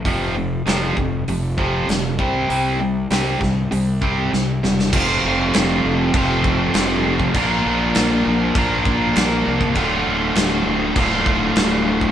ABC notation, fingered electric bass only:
X:1
M:4/4
L:1/8
Q:1/4=99
K:F
V:1 name="Fingered electric bass" clef=bass
F,,,2 F,,, F,,, F,,,2 F,,, C,, | C,,2 C,, C,, C,,2 C,, E,,, | F,,, F,,, F,,, F,,, F,,,2 F,,,2 | B,,, B,,, B,,, B,,, B,,, B,,, B,,, C,, |
D,,, D,,, D,,, D,,, D,,,2 D,,,2 |]